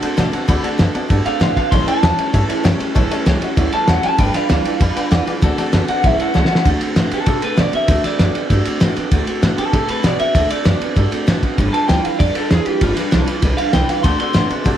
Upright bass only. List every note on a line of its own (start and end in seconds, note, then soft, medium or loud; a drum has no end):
0.03 muted upright bass stroke medium
0.18 0.30 B2 medium
0.33 muted upright bass stroke medium
0.49 0.61 D2 medium
0.64 muted upright bass stroke medium
0.80 0.92 F#2 medium
0.95 muted upright bass stroke medium
1.10 1.23 G2 loud
1.26 muted upright bass stroke medium
1.40 1.53 A2 medium
1.72 1.84 A1 medium
1.87 muted upright bass stroke medium
2.03 2.15 E2 medium
2.34 2.46 G2 medium
2.49 muted upright bass stroke medium
2.65 2.77 F#2 medium
2.80 muted upright bass stroke medium
2.96 3.08 A1 medium
3.11 muted upright bass stroke medium
3.26 3.39 C#2 loud
3.57 3.69 D2 loud
3.73 muted upright bass stroke medium
3.88 4.00 E2 medium
4.04 muted upright bass stroke medium
4.19 4.31 G1 medium
4.35 muted upright bass stroke medium
4.50 4.62 D2 loud
4.65 muted upright bass stroke medium
4.81 4.93 F2 medium
4.96 muted upright bass stroke medium
5.11 5.23 E2 medium
5.27 muted upright bass stroke medium
5.43 5.55 D2 loud
5.58 muted upright bass stroke medium
5.73 5.85 F#2 loud
5.89 muted upright bass stroke medium
6.04 6.16 A1 loud
6.19 muted upright bass stroke medium
6.35 6.47 C#2 medium
6.66 6.78 D2 medium
6.81 muted upright bass stroke medium
6.96 7.09 A2 medium
7.12 muted upright bass stroke medium
7.27 7.39 C3 loud
7.42 muted upright bass stroke medium
7.59 7.71 B2 medium
7.73 muted upright bass stroke medium
7.89 8.01 D2 medium
8.05 muted upright bass stroke medium
8.20 8.32 F#2 medium
8.35 muted upright bass stroke medium
8.50 8.62 G2 medium
8.67 muted upright bass stroke medium
8.82 8.94 A2 medium
8.97 muted upright bass stroke medium
9.12 9.24 D2 medium
9.27 muted upright bass stroke medium
9.43 9.55 A2 medium
9.58 muted upright bass stroke medium
9.73 9.86 C3 loud
9.89 muted upright bass stroke medium
10.04 10.16 B2 loud
10.20 muted upright bass stroke medium
10.35 10.47 D2 medium
10.66 10.78 F#2 medium
10.81 muted upright bass stroke medium
10.97 11.09 G2 loud
11.28 11.40 A2 medium
11.43 muted upright bass stroke medium
11.59 11.71 G1 medium
11.74 muted upright bass stroke medium
11.89 12.02 D2 loud
12.20 12.32 F2 medium
12.36 muted upright bass stroke medium
12.51 12.63 E2 medium
12.66 muted upright bass stroke medium
12.82 12.94 G1 medium
12.97 muted upright bass stroke medium
13.13 13.25 B1 loud
13.43 13.55 C2 loud
13.59 muted upright bass stroke medium
13.74 13.86 C2 medium
13.89 muted upright bass stroke medium
14.04 14.17 D2 medium
14.35 14.47 A2 medium
14.50 muted upright bass stroke medium
14.66 14.78 C3 medium